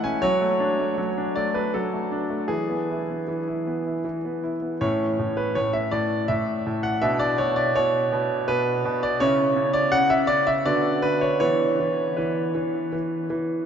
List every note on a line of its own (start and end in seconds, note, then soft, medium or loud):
0.00 0.25 A3 medium
0.00 0.16 E4 medium
0.00 0.25 F#5 loud
0.00 0.23 G#5 loud
0.05 0.23 C#4 medium
0.22 0.96 F#3 medium
0.22 1.35 C#5 loud
0.41 0.71 A3 medium
0.60 0.90 D4 medium
0.80 1.09 A3 medium
0.98 1.73 F#3 medium
1.18 1.47 D4 medium
1.36 1.66 A3 medium
1.36 1.55 D5 medium
1.54 1.85 D4 soft
1.54 1.73 B4 medium
1.74 2.49 F#3 medium
1.74 2.51 A4 medium
1.93 2.24 A3 medium
2.12 2.43 D4 medium
2.30 2.50 A3 soft
2.48 3.26 E3 medium
2.48 4.42 G#4 medium
2.70 3.01 B3 soft
2.90 3.20 E4 soft
3.09 3.40 B3 soft
3.28 4.03 E3 medium
3.48 3.78 E4 soft
3.67 3.97 B3 soft
3.87 4.17 E4 soft
4.05 4.78 E3 medium
4.25 4.55 B3 soft
4.43 4.73 E4 soft
4.62 4.80 B3 soft
4.81 5.17 A2 medium
4.81 6.99 C#4 soft
4.81 6.99 E4 soft
4.81 5.37 C#5 medium
5.19 5.55 A2 medium
5.37 5.55 B4 medium
5.55 5.91 A2 medium
5.55 5.74 C#5 loud
5.73 5.92 E5 medium
5.91 6.28 A2 medium
5.91 6.29 D5 medium
6.28 6.65 A2 medium
6.28 6.84 E5 loud
6.67 7.02 A2 medium
6.83 7.02 F#5 medium
7.02 7.38 B2 medium
7.02 9.17 D4 medium
7.02 9.16 E4 medium
7.02 7.20 E5 loud
7.19 7.38 D5 loud
7.38 7.74 B2 medium
7.38 7.57 C#5 medium
7.56 7.75 D5 medium
7.75 8.11 B2 medium
7.75 8.48 C#5 loud
8.13 8.47 B2 medium
8.48 8.83 B2 medium
8.48 9.02 B4 loud
8.85 9.20 B2 medium
9.03 9.21 D5 medium
9.20 9.55 C#3 medium
9.20 10.63 C#4 medium
9.20 10.63 E4 medium
9.20 9.74 C#5 loud
9.56 9.91 C#3 medium
9.73 9.92 D5 loud
9.92 10.27 C#3 medium
9.92 10.10 F#5 loud
10.10 10.29 E5 loud
10.27 10.65 C#3 medium
10.27 10.47 D5 loud
10.47 10.66 E5 loud
10.66 11.01 D3 medium
10.66 11.38 B3 medium
10.66 11.38 F#4 medium
10.66 11.04 D5 loud
11.02 11.40 D3 medium
11.02 11.22 B4 loud
11.21 11.38 C#5 medium
11.40 11.78 E3 medium
11.40 13.64 B3 medium
11.40 13.64 E4 medium
11.40 12.18 C#5 loud
11.80 12.16 E3 medium
12.17 12.53 E3 medium
12.17 12.93 B4 medium
12.55 12.91 E3 medium
12.93 13.28 E3 medium
13.30 13.66 E3 medium